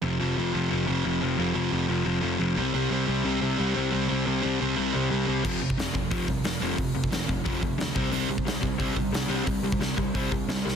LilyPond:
<<
  \new Staff \with { instrumentName = "Distorted electric guitar" } { \clef bass \time 4/4 \key c \minor \tempo 4 = 178 <f, c f>8 <f, c f>8 <f, c f>8 <f, c f>8 <f, c f>8 <f, c f>8 <f, c f>8 <f, c f>8 | <f, c f>8 <f, c f>8 <f, c f>8 <f, c f>8 <f, c f>8 <f, c f>8 <f, c f>8 <c g c'>8 | <c g c'>8 <c g c'>8 <c g c'>8 <c g c'>8 <c g c'>8 <c g c'>8 <c g c'>8 <c g c'>8 | <c g c'>8 <c g c'>8 <c g c'>8 <c g c'>8 <c g c'>8 <c g c'>8 <c g c'>8 <c g c'>8 |
<f, c f>8 <f, c>8 <f, c>8 <f, c>8 <f, c f>8 <f, c>8 <f, c>8 <f, c f>8 | <f, c>8 <f, c>8 <f, c>8 <f, c>8 <f, c f>8 <f, c>8 <f, c>8 <c g c'>8 | <c g c'>8 <c g>8 <c g>8 <c g>8 <c g c'>8 <c g>8 <c g>8 <c g c'>8 | <c g>8 <c g>8 <c g>8 <c g>8 <c g c'>8 <c g>8 <c g>8 <c g>8 | }
  \new Staff \with { instrumentName = "Overdriven electric guitar" } { \clef bass \time 4/4 \key c \minor <f, c f>8 <f, c f>8 <f, c f>8 <f, c f>8 <f, c f>8 <f, c f>8 <f, c f>8 <f, c f>8 | <f, c f>8 <f, c f>8 <f, c f>8 <f, c f>8 <f, c f>8 <f, c f>8 <f, c f>8 <c g c'>8 | <c g c'>8 <c g c'>8 <c g c'>8 <c g c'>8 <c g c'>8 <c g c'>8 <c g c'>8 <c g c'>8 | <c g c'>8 <c g c'>8 <c g c'>8 <c g c'>8 <c g c'>8 <c g c'>8 <c g c'>8 <c g c'>8 |
<f, c f>8 <f, c>8 <f, c>8 <f, c>8 <f, c f>8 <f, c>8 <f, c>8 <f, c f>8 | <f, c>8 <f, c>8 <f, c>8 <f, c>8 <f, c f>8 <f, c>8 <f, c>8 <c g c'>8 | <c g c'>8 <c g>8 <c g>8 <c g>8 <c g c'>8 <c g>8 <c g>8 <c g c'>8 | <c g>8 <c g>8 <c g>8 <c g>8 <c g c'>8 <c g>8 <c g>8 <c g>8 | }
  \new Staff \with { instrumentName = "Picked electric bass" } { \clef bass \time 4/4 \key c \minor f,,8 f,,8 f,,8 f,,8 f,,8 f,,8 f,,8 f,,8 | f,,8 f,,8 f,,8 f,,8 f,,8 f,,8 f,,8 c,8 | c,8 c,8 c,8 c,8 c,8 c,8 c,8 c,8 | c,8 c,8 c,8 c,8 c,8 c,8 c,8 c,8 |
r8 f,,8 f,,8 f,,8 f,,8 c,8 f,,8 f,,8 | f,,8 f,,8 f,,8 f,,8 f,,8 f,,8 d,8 c,8 | c,8 c,8 c,8 c,8 c,8 g,,8 c,8 c,8 | c,8 c,8 c,8 c,8 c,8 c,8 c,8 c,8 | }
  \new DrumStaff \with { instrumentName = "Drums" } \drummode { \time 4/4 r4 r4 r4 r4 | r4 r4 r4 r4 | r4 r4 r4 r4 | r4 r4 r4 r4 |
<cymc bd>8. bd16 <hho sn>8 bd8 <hho bd>8 bd8 <hho sn>4 | <hho bd>8. bd16 <hho sn>8 bd8 <hho bd>8 bd8 <hho sn>8 bd8 | hho8. bd16 <hho sn>8 bd8 <hho bd>8 bd8 <hho sn>4 | <hho bd>8. bd16 <hho sn>8 bd8 <hho bd>8 bd8 <hho sn>8 sn8 | }
>>